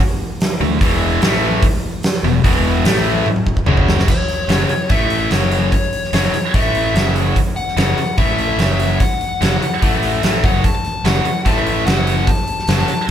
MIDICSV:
0, 0, Header, 1, 8, 480
1, 0, Start_track
1, 0, Tempo, 409556
1, 948, Time_signature, 4, 2, 24, 8
1, 15361, End_track
2, 0, Start_track
2, 0, Title_t, "Lead electric guitar"
2, 0, Program_c, 0, 29
2, 4808, Note_on_c, 0, 73, 85
2, 5757, Note_off_c, 0, 73, 0
2, 5762, Note_on_c, 0, 76, 100
2, 6200, Note_off_c, 0, 76, 0
2, 6242, Note_on_c, 0, 73, 91
2, 6695, Note_off_c, 0, 73, 0
2, 6709, Note_on_c, 0, 73, 87
2, 7673, Note_off_c, 0, 73, 0
2, 7678, Note_on_c, 0, 76, 81
2, 8346, Note_off_c, 0, 76, 0
2, 8862, Note_on_c, 0, 78, 82
2, 9103, Note_off_c, 0, 78, 0
2, 9117, Note_on_c, 0, 78, 84
2, 9560, Note_off_c, 0, 78, 0
2, 9586, Note_on_c, 0, 76, 79
2, 10546, Note_off_c, 0, 76, 0
2, 10551, Note_on_c, 0, 78, 92
2, 12184, Note_off_c, 0, 78, 0
2, 12242, Note_on_c, 0, 78, 90
2, 12460, Note_off_c, 0, 78, 0
2, 12478, Note_on_c, 0, 81, 94
2, 12587, Note_off_c, 0, 81, 0
2, 12601, Note_on_c, 0, 81, 104
2, 12951, Note_on_c, 0, 78, 89
2, 12967, Note_off_c, 0, 81, 0
2, 13437, Note_on_c, 0, 81, 103
2, 13446, Note_off_c, 0, 78, 0
2, 13558, Note_off_c, 0, 81, 0
2, 13558, Note_on_c, 0, 76, 87
2, 13892, Note_off_c, 0, 76, 0
2, 13896, Note_on_c, 0, 78, 87
2, 14014, Note_off_c, 0, 78, 0
2, 14028, Note_on_c, 0, 78, 89
2, 14365, Note_off_c, 0, 78, 0
2, 14395, Note_on_c, 0, 81, 91
2, 15306, Note_off_c, 0, 81, 0
2, 15361, End_track
3, 0, Start_track
3, 0, Title_t, "Overdriven electric guitar"
3, 0, Program_c, 1, 29
3, 715, Note_on_c, 1, 50, 63
3, 722, Note_on_c, 1, 57, 76
3, 903, Note_off_c, 1, 50, 0
3, 907, Note_off_c, 1, 57, 0
3, 954, Note_on_c, 1, 40, 95
3, 961, Note_on_c, 1, 47, 95
3, 967, Note_on_c, 1, 52, 109
3, 1423, Note_off_c, 1, 40, 0
3, 1429, Note_off_c, 1, 52, 0
3, 1431, Note_off_c, 1, 47, 0
3, 1431, Note_on_c, 1, 45, 102
3, 1441, Note_on_c, 1, 52, 112
3, 1445, Note_on_c, 1, 57, 108
3, 1901, Note_off_c, 1, 45, 0
3, 1906, Note_off_c, 1, 52, 0
3, 1908, Note_off_c, 1, 57, 0
3, 2629, Note_on_c, 1, 40, 62
3, 2633, Note_on_c, 1, 47, 82
3, 2819, Note_off_c, 1, 40, 0
3, 2821, Note_off_c, 1, 47, 0
3, 2858, Note_on_c, 1, 40, 96
3, 2866, Note_on_c, 1, 47, 100
3, 2868, Note_on_c, 1, 52, 101
3, 3334, Note_off_c, 1, 40, 0
3, 3335, Note_off_c, 1, 52, 0
3, 3338, Note_off_c, 1, 47, 0
3, 3347, Note_on_c, 1, 45, 89
3, 3349, Note_on_c, 1, 52, 103
3, 3352, Note_on_c, 1, 57, 112
3, 3818, Note_off_c, 1, 45, 0
3, 3819, Note_off_c, 1, 52, 0
3, 3821, Note_off_c, 1, 57, 0
3, 4310, Note_on_c, 1, 42, 88
3, 4312, Note_on_c, 1, 49, 92
3, 4316, Note_on_c, 1, 54, 98
3, 4780, Note_off_c, 1, 42, 0
3, 4780, Note_off_c, 1, 49, 0
3, 4783, Note_off_c, 1, 54, 0
3, 5267, Note_on_c, 1, 42, 91
3, 5278, Note_on_c, 1, 49, 90
3, 5282, Note_on_c, 1, 54, 88
3, 5498, Note_off_c, 1, 42, 0
3, 5504, Note_off_c, 1, 49, 0
3, 5506, Note_off_c, 1, 54, 0
3, 5743, Note_on_c, 1, 45, 82
3, 5754, Note_on_c, 1, 52, 86
3, 5755, Note_on_c, 1, 57, 82
3, 6217, Note_off_c, 1, 45, 0
3, 6222, Note_off_c, 1, 52, 0
3, 6223, Note_off_c, 1, 57, 0
3, 6230, Note_on_c, 1, 42, 95
3, 6235, Note_on_c, 1, 54, 92
3, 6237, Note_on_c, 1, 49, 90
3, 6701, Note_off_c, 1, 42, 0
3, 6703, Note_off_c, 1, 54, 0
3, 6704, Note_off_c, 1, 49, 0
3, 7192, Note_on_c, 1, 42, 90
3, 7194, Note_on_c, 1, 49, 96
3, 7207, Note_on_c, 1, 54, 105
3, 7416, Note_off_c, 1, 42, 0
3, 7423, Note_off_c, 1, 49, 0
3, 7430, Note_off_c, 1, 54, 0
3, 7672, Note_on_c, 1, 45, 80
3, 7681, Note_on_c, 1, 52, 84
3, 7681, Note_on_c, 1, 57, 86
3, 8143, Note_off_c, 1, 45, 0
3, 8147, Note_off_c, 1, 52, 0
3, 8147, Note_off_c, 1, 57, 0
3, 8150, Note_on_c, 1, 42, 92
3, 8154, Note_on_c, 1, 49, 95
3, 8157, Note_on_c, 1, 54, 107
3, 8622, Note_off_c, 1, 42, 0
3, 8624, Note_off_c, 1, 49, 0
3, 8625, Note_off_c, 1, 54, 0
3, 9114, Note_on_c, 1, 42, 78
3, 9116, Note_on_c, 1, 49, 109
3, 9125, Note_on_c, 1, 54, 98
3, 9344, Note_off_c, 1, 42, 0
3, 9345, Note_off_c, 1, 49, 0
3, 9350, Note_off_c, 1, 54, 0
3, 9587, Note_on_c, 1, 45, 80
3, 9592, Note_on_c, 1, 52, 83
3, 9599, Note_on_c, 1, 57, 91
3, 10061, Note_off_c, 1, 45, 0
3, 10064, Note_off_c, 1, 52, 0
3, 10067, Note_off_c, 1, 57, 0
3, 10069, Note_on_c, 1, 42, 88
3, 10080, Note_on_c, 1, 49, 82
3, 10085, Note_on_c, 1, 54, 105
3, 10543, Note_off_c, 1, 42, 0
3, 10548, Note_off_c, 1, 49, 0
3, 10550, Note_off_c, 1, 54, 0
3, 11028, Note_on_c, 1, 42, 84
3, 11036, Note_on_c, 1, 49, 92
3, 11039, Note_on_c, 1, 54, 102
3, 11262, Note_off_c, 1, 42, 0
3, 11266, Note_off_c, 1, 49, 0
3, 11267, Note_off_c, 1, 54, 0
3, 11508, Note_on_c, 1, 45, 67
3, 11516, Note_on_c, 1, 52, 84
3, 11526, Note_on_c, 1, 57, 94
3, 11982, Note_off_c, 1, 45, 0
3, 11987, Note_off_c, 1, 52, 0
3, 11991, Note_off_c, 1, 57, 0
3, 11996, Note_on_c, 1, 45, 83
3, 12001, Note_on_c, 1, 52, 95
3, 12004, Note_on_c, 1, 57, 90
3, 12227, Note_off_c, 1, 45, 0
3, 12229, Note_off_c, 1, 52, 0
3, 12231, Note_off_c, 1, 57, 0
3, 12236, Note_on_c, 1, 42, 91
3, 12247, Note_on_c, 1, 49, 92
3, 12247, Note_on_c, 1, 54, 88
3, 12466, Note_off_c, 1, 42, 0
3, 12472, Note_off_c, 1, 49, 0
3, 12472, Note_off_c, 1, 54, 0
3, 12957, Note_on_c, 1, 42, 83
3, 12962, Note_on_c, 1, 49, 94
3, 12967, Note_on_c, 1, 54, 90
3, 13183, Note_off_c, 1, 42, 0
3, 13190, Note_off_c, 1, 49, 0
3, 13192, Note_off_c, 1, 54, 0
3, 13427, Note_on_c, 1, 45, 68
3, 13433, Note_on_c, 1, 52, 83
3, 13436, Note_on_c, 1, 57, 83
3, 13902, Note_off_c, 1, 45, 0
3, 13905, Note_off_c, 1, 52, 0
3, 13907, Note_off_c, 1, 57, 0
3, 13911, Note_on_c, 1, 42, 87
3, 13911, Note_on_c, 1, 49, 83
3, 13920, Note_on_c, 1, 54, 96
3, 14384, Note_off_c, 1, 42, 0
3, 14384, Note_off_c, 1, 49, 0
3, 14389, Note_off_c, 1, 54, 0
3, 14874, Note_on_c, 1, 42, 87
3, 14874, Note_on_c, 1, 49, 96
3, 14879, Note_on_c, 1, 54, 100
3, 15096, Note_off_c, 1, 42, 0
3, 15106, Note_off_c, 1, 49, 0
3, 15108, Note_off_c, 1, 54, 0
3, 15361, End_track
4, 0, Start_track
4, 0, Title_t, "Fingered electric bass"
4, 0, Program_c, 2, 33
4, 705, Note_on_c, 2, 38, 88
4, 929, Note_off_c, 2, 38, 0
4, 943, Note_on_c, 2, 28, 89
4, 1391, Note_off_c, 2, 28, 0
4, 1419, Note_on_c, 2, 33, 94
4, 1869, Note_off_c, 2, 33, 0
4, 2615, Note_on_c, 2, 28, 76
4, 2843, Note_off_c, 2, 28, 0
4, 2860, Note_on_c, 2, 28, 88
4, 3308, Note_off_c, 2, 28, 0
4, 3332, Note_on_c, 2, 33, 96
4, 3784, Note_off_c, 2, 33, 0
4, 4296, Note_on_c, 2, 30, 105
4, 4746, Note_off_c, 2, 30, 0
4, 5248, Note_on_c, 2, 30, 84
4, 5479, Note_off_c, 2, 30, 0
4, 5744, Note_on_c, 2, 33, 94
4, 6191, Note_off_c, 2, 33, 0
4, 6224, Note_on_c, 2, 30, 87
4, 6671, Note_off_c, 2, 30, 0
4, 7182, Note_on_c, 2, 30, 91
4, 7407, Note_off_c, 2, 30, 0
4, 7664, Note_on_c, 2, 33, 88
4, 8112, Note_off_c, 2, 33, 0
4, 8136, Note_on_c, 2, 30, 100
4, 8588, Note_off_c, 2, 30, 0
4, 9100, Note_on_c, 2, 30, 94
4, 9327, Note_off_c, 2, 30, 0
4, 9584, Note_on_c, 2, 33, 93
4, 10033, Note_off_c, 2, 33, 0
4, 10054, Note_on_c, 2, 30, 98
4, 10508, Note_off_c, 2, 30, 0
4, 11033, Note_on_c, 2, 30, 89
4, 11255, Note_off_c, 2, 30, 0
4, 11509, Note_on_c, 2, 33, 86
4, 11957, Note_off_c, 2, 33, 0
4, 11995, Note_on_c, 2, 33, 90
4, 12217, Note_off_c, 2, 33, 0
4, 12231, Note_on_c, 2, 30, 96
4, 12454, Note_off_c, 2, 30, 0
4, 12938, Note_on_c, 2, 30, 88
4, 13168, Note_off_c, 2, 30, 0
4, 13423, Note_on_c, 2, 33, 86
4, 13874, Note_off_c, 2, 33, 0
4, 13904, Note_on_c, 2, 30, 90
4, 14354, Note_off_c, 2, 30, 0
4, 14859, Note_on_c, 2, 30, 91
4, 15088, Note_off_c, 2, 30, 0
4, 15361, End_track
5, 0, Start_track
5, 0, Title_t, "Muted distorted electric guitar strokes"
5, 5508, Note_on_c, 9, 29, 52
5, 5625, Note_off_c, 9, 29, 0
5, 7426, Note_on_c, 9, 29, 55
5, 7543, Note_off_c, 9, 29, 0
5, 9356, Note_on_c, 9, 29, 54
5, 9473, Note_off_c, 9, 29, 0
5, 11279, Note_on_c, 9, 29, 56
5, 11396, Note_off_c, 9, 29, 0
5, 13194, Note_on_c, 9, 29, 53
5, 13311, Note_off_c, 9, 29, 0
5, 15113, Note_on_c, 9, 29, 50
5, 15230, Note_off_c, 9, 29, 0
5, 15361, End_track
6, 0, Start_track
6, 0, Title_t, "Muted fingered electric bass strokes"
6, 5493, Note_on_c, 9, 29, 38
6, 5610, Note_off_c, 9, 29, 0
6, 7417, Note_on_c, 9, 29, 42
6, 7534, Note_off_c, 9, 29, 0
6, 9345, Note_on_c, 9, 29, 37
6, 9462, Note_off_c, 9, 29, 0
6, 11268, Note_on_c, 9, 29, 42
6, 11386, Note_off_c, 9, 29, 0
6, 13183, Note_on_c, 9, 29, 43
6, 13300, Note_off_c, 9, 29, 0
6, 15095, Note_on_c, 9, 29, 40
6, 15212, Note_off_c, 9, 29, 0
6, 15361, End_track
7, 0, Start_track
7, 0, Title_t, "Muted overdriven electric guitar strokes"
7, 5514, Note_on_c, 9, 29, 62
7, 5631, Note_off_c, 9, 29, 0
7, 7430, Note_on_c, 9, 29, 56
7, 7548, Note_off_c, 9, 29, 0
7, 9360, Note_on_c, 9, 29, 59
7, 9477, Note_off_c, 9, 29, 0
7, 11280, Note_on_c, 9, 29, 59
7, 11398, Note_off_c, 9, 29, 0
7, 13197, Note_on_c, 9, 29, 59
7, 13315, Note_off_c, 9, 29, 0
7, 15110, Note_on_c, 9, 29, 61
7, 15227, Note_off_c, 9, 29, 0
7, 15361, End_track
8, 0, Start_track
8, 0, Title_t, "Drums"
8, 475, Note_on_c, 9, 46, 56
8, 489, Note_on_c, 9, 38, 101
8, 592, Note_off_c, 9, 46, 0
8, 606, Note_off_c, 9, 38, 0
8, 949, Note_on_c, 9, 36, 99
8, 952, Note_on_c, 9, 46, 60
8, 1067, Note_off_c, 9, 36, 0
8, 1070, Note_off_c, 9, 46, 0
8, 1427, Note_on_c, 9, 46, 59
8, 1441, Note_on_c, 9, 38, 121
8, 1544, Note_off_c, 9, 46, 0
8, 1558, Note_off_c, 9, 38, 0
8, 1905, Note_on_c, 9, 36, 105
8, 1908, Note_on_c, 9, 46, 58
8, 2022, Note_off_c, 9, 36, 0
8, 2025, Note_off_c, 9, 46, 0
8, 2381, Note_on_c, 9, 46, 57
8, 2395, Note_on_c, 9, 38, 103
8, 2498, Note_off_c, 9, 46, 0
8, 2512, Note_off_c, 9, 38, 0
8, 2864, Note_on_c, 9, 36, 98
8, 2866, Note_on_c, 9, 46, 64
8, 2981, Note_off_c, 9, 36, 0
8, 2983, Note_off_c, 9, 46, 0
8, 3342, Note_on_c, 9, 46, 62
8, 3356, Note_on_c, 9, 38, 114
8, 3459, Note_off_c, 9, 46, 0
8, 3473, Note_off_c, 9, 38, 0
8, 3821, Note_on_c, 9, 48, 60
8, 3938, Note_off_c, 9, 48, 0
8, 3940, Note_on_c, 9, 48, 58
8, 4057, Note_off_c, 9, 48, 0
8, 4061, Note_on_c, 9, 36, 74
8, 4179, Note_off_c, 9, 36, 0
8, 4181, Note_on_c, 9, 36, 73
8, 4294, Note_on_c, 9, 45, 76
8, 4299, Note_off_c, 9, 36, 0
8, 4412, Note_off_c, 9, 45, 0
8, 4421, Note_on_c, 9, 36, 72
8, 4539, Note_off_c, 9, 36, 0
8, 4553, Note_on_c, 9, 38, 92
8, 4670, Note_off_c, 9, 38, 0
8, 4676, Note_on_c, 9, 38, 87
8, 4782, Note_on_c, 9, 49, 89
8, 4783, Note_on_c, 9, 36, 89
8, 4794, Note_off_c, 9, 38, 0
8, 4899, Note_off_c, 9, 49, 0
8, 4901, Note_off_c, 9, 36, 0
8, 5022, Note_on_c, 9, 46, 43
8, 5139, Note_off_c, 9, 46, 0
8, 5263, Note_on_c, 9, 46, 74
8, 5277, Note_on_c, 9, 38, 106
8, 5380, Note_off_c, 9, 46, 0
8, 5394, Note_off_c, 9, 38, 0
8, 5499, Note_on_c, 9, 46, 49
8, 5617, Note_off_c, 9, 46, 0
8, 5738, Note_on_c, 9, 46, 67
8, 5742, Note_on_c, 9, 36, 96
8, 5855, Note_off_c, 9, 46, 0
8, 5860, Note_off_c, 9, 36, 0
8, 5980, Note_on_c, 9, 46, 54
8, 6097, Note_off_c, 9, 46, 0
8, 6221, Note_on_c, 9, 46, 72
8, 6235, Note_on_c, 9, 38, 99
8, 6339, Note_off_c, 9, 46, 0
8, 6353, Note_off_c, 9, 38, 0
8, 6464, Note_on_c, 9, 46, 56
8, 6581, Note_off_c, 9, 46, 0
8, 6705, Note_on_c, 9, 36, 98
8, 6707, Note_on_c, 9, 46, 68
8, 6823, Note_off_c, 9, 36, 0
8, 6824, Note_off_c, 9, 46, 0
8, 6948, Note_on_c, 9, 46, 50
8, 7065, Note_off_c, 9, 46, 0
8, 7085, Note_on_c, 9, 38, 29
8, 7186, Note_on_c, 9, 46, 78
8, 7200, Note_off_c, 9, 38, 0
8, 7200, Note_on_c, 9, 38, 99
8, 7303, Note_off_c, 9, 46, 0
8, 7317, Note_off_c, 9, 38, 0
8, 7429, Note_on_c, 9, 46, 53
8, 7546, Note_off_c, 9, 46, 0
8, 7665, Note_on_c, 9, 46, 77
8, 7667, Note_on_c, 9, 36, 102
8, 7782, Note_off_c, 9, 46, 0
8, 7785, Note_off_c, 9, 36, 0
8, 7910, Note_on_c, 9, 46, 51
8, 8027, Note_off_c, 9, 46, 0
8, 8153, Note_on_c, 9, 46, 68
8, 8167, Note_on_c, 9, 38, 100
8, 8270, Note_off_c, 9, 46, 0
8, 8284, Note_off_c, 9, 38, 0
8, 8390, Note_on_c, 9, 46, 51
8, 8507, Note_off_c, 9, 46, 0
8, 8629, Note_on_c, 9, 36, 95
8, 8633, Note_on_c, 9, 46, 64
8, 8746, Note_off_c, 9, 36, 0
8, 8751, Note_off_c, 9, 46, 0
8, 8871, Note_on_c, 9, 46, 40
8, 8988, Note_off_c, 9, 46, 0
8, 9004, Note_on_c, 9, 38, 31
8, 9109, Note_on_c, 9, 46, 62
8, 9121, Note_off_c, 9, 38, 0
8, 9123, Note_on_c, 9, 38, 110
8, 9226, Note_off_c, 9, 46, 0
8, 9240, Note_off_c, 9, 38, 0
8, 9348, Note_on_c, 9, 46, 51
8, 9466, Note_off_c, 9, 46, 0
8, 9583, Note_on_c, 9, 46, 62
8, 9587, Note_on_c, 9, 36, 101
8, 9700, Note_off_c, 9, 46, 0
8, 9704, Note_off_c, 9, 36, 0
8, 9826, Note_on_c, 9, 46, 45
8, 9943, Note_off_c, 9, 46, 0
8, 10066, Note_on_c, 9, 46, 65
8, 10080, Note_on_c, 9, 38, 91
8, 10183, Note_off_c, 9, 46, 0
8, 10197, Note_off_c, 9, 38, 0
8, 10309, Note_on_c, 9, 46, 52
8, 10426, Note_off_c, 9, 46, 0
8, 10550, Note_on_c, 9, 46, 66
8, 10551, Note_on_c, 9, 36, 101
8, 10668, Note_off_c, 9, 36, 0
8, 10668, Note_off_c, 9, 46, 0
8, 10793, Note_on_c, 9, 46, 50
8, 10910, Note_off_c, 9, 46, 0
8, 11037, Note_on_c, 9, 46, 68
8, 11051, Note_on_c, 9, 38, 110
8, 11155, Note_off_c, 9, 46, 0
8, 11169, Note_off_c, 9, 38, 0
8, 11278, Note_on_c, 9, 46, 54
8, 11395, Note_off_c, 9, 46, 0
8, 11514, Note_on_c, 9, 36, 95
8, 11514, Note_on_c, 9, 46, 70
8, 11631, Note_off_c, 9, 36, 0
8, 11631, Note_off_c, 9, 46, 0
8, 11753, Note_on_c, 9, 46, 57
8, 11871, Note_off_c, 9, 46, 0
8, 11992, Note_on_c, 9, 46, 66
8, 12006, Note_on_c, 9, 38, 101
8, 12109, Note_off_c, 9, 46, 0
8, 12123, Note_off_c, 9, 38, 0
8, 12231, Note_on_c, 9, 46, 52
8, 12233, Note_on_c, 9, 36, 101
8, 12348, Note_off_c, 9, 46, 0
8, 12350, Note_off_c, 9, 36, 0
8, 12472, Note_on_c, 9, 46, 67
8, 12473, Note_on_c, 9, 36, 103
8, 12590, Note_off_c, 9, 36, 0
8, 12590, Note_off_c, 9, 46, 0
8, 12713, Note_on_c, 9, 46, 44
8, 12830, Note_off_c, 9, 46, 0
8, 12950, Note_on_c, 9, 46, 70
8, 12964, Note_on_c, 9, 38, 115
8, 13067, Note_off_c, 9, 46, 0
8, 13082, Note_off_c, 9, 38, 0
8, 13189, Note_on_c, 9, 46, 51
8, 13306, Note_off_c, 9, 46, 0
8, 13428, Note_on_c, 9, 46, 67
8, 13429, Note_on_c, 9, 36, 91
8, 13545, Note_off_c, 9, 46, 0
8, 13546, Note_off_c, 9, 36, 0
8, 13673, Note_on_c, 9, 46, 50
8, 13790, Note_off_c, 9, 46, 0
8, 13908, Note_on_c, 9, 46, 59
8, 13922, Note_on_c, 9, 38, 110
8, 14025, Note_off_c, 9, 46, 0
8, 14039, Note_off_c, 9, 38, 0
8, 14148, Note_on_c, 9, 46, 53
8, 14265, Note_off_c, 9, 46, 0
8, 14384, Note_on_c, 9, 36, 99
8, 14386, Note_on_c, 9, 46, 69
8, 14502, Note_off_c, 9, 36, 0
8, 14504, Note_off_c, 9, 46, 0
8, 14621, Note_on_c, 9, 46, 51
8, 14738, Note_off_c, 9, 46, 0
8, 14752, Note_on_c, 9, 38, 31
8, 14856, Note_on_c, 9, 46, 75
8, 14869, Note_off_c, 9, 38, 0
8, 14870, Note_on_c, 9, 38, 116
8, 14973, Note_off_c, 9, 46, 0
8, 14987, Note_off_c, 9, 38, 0
8, 15098, Note_on_c, 9, 46, 52
8, 15215, Note_off_c, 9, 46, 0
8, 15361, End_track
0, 0, End_of_file